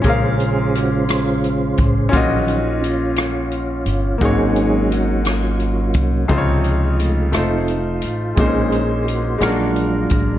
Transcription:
<<
  \new Staff \with { instrumentName = "Grand piano" } { \time 6/8 \key bes \minor \tempo 4. = 58 <des' aes' bes' f''>2. | <des' f' ges' ees''>2. | <bes ges' aes' des''>2. | <c ees' f' c'' des''>4. <a ees' f' c''>4. |
<aes c' des' ees' c''>4. <aes des' d' ges' bes'>4. | }
  \new Staff \with { instrumentName = "Grand piano" } { \clef bass \time 6/8 \key bes \minor bes,4. r4. | bes,4. r4. | aes,4. r4. | des4. r4. |
bes,4. bes4. | }
  \new Staff \with { instrumentName = "Tonewheel organ" } { \time 6/8 \key bes \minor << { aes'4 ges'8 f'4 r8 | r8 ees'8 f'2 | aes'4 ges'8 f'4 r8 | r8 ees'8 f'2 |
aes'4 ges'8 f'4 r8 | } \\ { <des' f'>4. <aes des'>4. | r4 des'2 | ees'4. <bes des'>4. | r4 a2 |
<bes des'>4. r4. | } >> }
  \new Staff \with { instrumentName = "Tonewheel organ" } { \time 6/8 \key bes \minor <des aes c''>2. | <ees ges des'>8 r2 r8 | <ges bes des'>2. | <f aes ees'>4. <a c' ees'>8 r4 |
<aes ees' c''>8 r4 <ges aes d'>4. | }
  \new Staff \with { instrumentName = "Upright bass" } { \clef bass \time 6/8 \key bes \minor bes,,2~ bes,,8 a,,8 | bes,,2~ bes,,8 g,,8 | aes,,2~ aes,,8 c,8 | des,4. f,,4 a,,8 |
bes,,4. bes,,4 a,,8 | }
  \new DrumStaff \with { instrumentName = "Drums" } \drummode { \time 6/8 <hh bd>8 hh8 <hh ss>8 <hh ss>8 hh8 <hh bd>8 | <hh bd>8 hh8 hh8 <hh ss>8 hh8 hh8 | <hh bd>8 hh8 hh8 <hh ss>8 hh8 <hh bd>8 | <hh bd>8 hh8 hh8 <hh ss>8 hh8 hh8 |
<hh bd>8 hh8 hh8 <hh ss>8 hh8 <hh bd>8 | }
>>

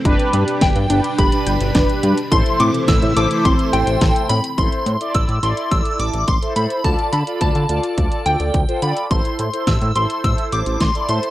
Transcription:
<<
  \new Staff \with { instrumentName = "Synth bell" } { \time 4/4 \key a \minor \tempo 4 = 106 r4 g''4 b''2 | c'''8 d'''8 e'''8 d'''8 c'''8 g''4 b''8 | c'''4 e'''8 c'''8 e'''8 d'''8 c'''8 b''8 | a''8 b''8 a''4. g''4 b''8 |
c'''4 e'''8 c'''8 e'''8 d'''8 c'''8 c'''8 | }
  \new Staff \with { instrumentName = "Analog polysynth" } { \time 4/4 \key a \minor <d' g' b'>4~ <d' g' b'>16 r16 <d' g' b'>8. <d' g' b'>4. r16 | <e' a' c''>4~ <e' a' c''>16 r16 <e' a' c''>16 <e' a' c''>4.~ <e' a' c''>16 r8 | <e' a' c''>8. <e' a' d''>8. <e' a' d''>4. r16 <e' a' c''>16 <e' a' c''>8 | <f' a' d''>8. <f' a' d''>8. <f' a' d''>4. r16 <f' a' c''>16 <f' a' d''>8 |
<e' a' c''>8. <e' a' c''>8. <e' a' c''>4. r16 <e' a' d''>16 <e' a' c''>8 | }
  \new Staff \with { instrumentName = "Synth pluck" } { \time 4/4 \key a \minor d'8 g'8 r8 d'8 g'8 g''8 d'8 g'8 | a'8 c'8 e'8 a'8 c'8 e'8 a'8 c'8 | r1 | r1 |
r1 | }
  \new Staff \with { instrumentName = "String machine" } { \clef bass \time 4/4 \key a \minor << { <g d'>1 | <c e a e'>1 | r1 | r1 |
r1 | } \\ { b,1~ | b,1 | r1 | r1 |
r1 | } >> }
  \new Staff \with { instrumentName = "Analog synth bass" } { \clef bass \time 4/4 \key a \minor g,,16 r16 g,16 r16 g,,16 g,16 g,,16 r16 g,,16 r16 g,,16 g,,16 g,,16 r16 g,16 r16 | a,,16 r16 a,16 r16 a,,16 a,16 a,,16 r16 a,,16 r16 a,,16 a,,16 a,,16 r16 a,16 r16 | a,,16 r16 a,16 r16 a,,16 a,16 a,,16 r16 a,,16 r16 a,,16 a,,16 a,,16 r16 a,16 r16 | d,16 r16 d16 r16 d,16 d16 d,16 r16 d,16 r16 d,16 d,16 d,16 r16 d16 r16 |
a,,16 r16 a,16 r16 a,,16 a,16 a,,16 r16 a,,16 r16 a,,16 a,,16 a,,16 r16 a,16 r16 | }
  \new DrumStaff \with { instrumentName = "Drums" } \drummode { \time 4/4 <hh bd>16 hh16 hh16 hh16 <hh bd sn>16 hh16 hh16 hh16 <hh bd>16 hh16 hh16 hh16 <hh bd sn>16 hh16 hh16 hh16 | <hh bd>16 hh16 hh16 hh16 <hh bd sn>16 hh16 hh16 hh16 <hh bd>16 hh16 hh16 hh16 <hh bd sn>16 hh16 hh16 hh16 | <hh bd>16 hh16 hh16 hh16 <hh bd>16 hh16 hh16 hh16 <hh bd>16 hh16 hh16 hh16 <hh bd>16 hh16 hh16 hh16 | <hh bd>16 hh16 hh16 hh16 <hh bd>16 hh16 hh16 hh16 <hh bd>16 hh16 hh16 hh16 <hh bd>16 hh16 hh16 hh16 |
<hh bd>16 hh16 hh16 hh16 <hh bd sn>16 hh16 hh16 hh16 <hh bd>16 hh16 hh16 hh16 <hh bd sn>16 hh16 hh16 hh16 | }
>>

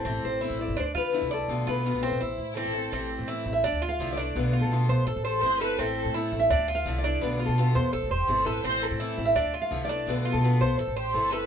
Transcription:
<<
  \new Staff \with { instrumentName = "Nylon-string guitar" } { \time 4/4 \key a \minor \tempo 4 = 168 a'8 c''4 d''8 c''8 b'4 a'8~ | a'8 b'4 c''4. r4 | r4 \tuplet 3/2 { r4 e''8~ e''4 f''8~ f''8 d''4 } | \tuplet 3/2 { b'4 a'8~ } a'8 c''4. r4 |
r4 \tuplet 3/2 { r4 e''8~ e''4 f''8~ f''8 d''4 } | \tuplet 3/2 { b'4 a'8~ } a'8 c''4. r4 | r4 \tuplet 3/2 { r4 e''8~ e''4 f''8~ f''8 d''4 } | \tuplet 3/2 { b'4 a'8~ } a'8 c''4. r4 | }
  \new Staff \with { instrumentName = "Violin section" } { \time 4/4 \key a \minor r1 | r2 r8 e'8 a'4 | r1 | r2 r8 a'8 c''8 b'8 |
a'8 a'4 r2 r8 | r2 r8 g'8 a'8 b'8 | c''8 a'4 r2 r8 | r2 r8 g'8 a'8 b'8 | }
  \new Staff \with { instrumentName = "Cuban tres" } { \time 4/4 \key a \minor c'4 e'4 d'8 f'4 d''8~ | d''8 f'4 c'8 e'4 c'4 | c'4 e'4 d'8 f'4 d'8~ | d'8 f'4 c''8 a'8 c''4 a'8 |
c'4 e'4 d'8 f'4 d'8~ | d'8 f'4 c''8 a'8 c''4 a'8 | c'4 e'4 d'8 f'4 d'8~ | d'8 f'4 c''8 a'8 c''4 a'8 | }
  \new Staff \with { instrumentName = "Steel-string acoustic guitar" } { \time 4/4 \key a \minor <e a c' e'>4 <e a c' e'>8 <a c' e'>8 r4 <d f a d' e'>8 <a d' e'>8 | <b, d a b f'>4 <b, d a b f'>8 <a b f'>8 r4 <e a c' e'>8 <a c' e'>8 | <e a c' e'>4 <e a c' e'>8 <a c' e'>8 r4 <d f a d' e'>8 <a d' e'>8 | <b, d a b f'>4 <b, d a b f'>8 <a b f'>8 r4 <e a c' e'>8 <a c' e'>8 |
<e a c' e'>4 <e a c' e'>8 <a c' e'>8 r4 <d f a d' e'>8 <a d' e'>8 | <b, d a b f'>4 <b, d a b f'>8 <a b f'>8 r4 <e a c' e'>8 <a c' e'>8 | <e a c' e'>4 <e a c' e'>8 <a c' e'>8 r4 <d f a d' e'>8 <a d' e'>8 | <b, d a b f'>4 <b, d a b f'>8 <a b f'>8 r4 <e a c' e'>8 <a c' e'>8 | }
  \new Staff \with { instrumentName = "Upright bass" } { \clef bass \time 4/4 \key a \minor a,,8 a,,8. a,,8 g,,16 d,8 d8. c,8. | b,,8 b,,8. b,,8 b,,16 a,,8 a,8. a,,8. | a,,8. a,8. a,,8 d,16 d,8. c,4 | b,,8. b,8. b,,8 a,,16 a,,8. g,,4 |
a,,8. a,8. a,,8 d,16 d,8. c,4 | b,,8. b,8. e,8 a,,16 a,,16 e,,8 g,,8 a,,8 | a,,8. a,8. a,,8 d,16 d,8. c,4 | b,,8. b,8. b,,8 a,,16 a,,8. g,,4 | }
>>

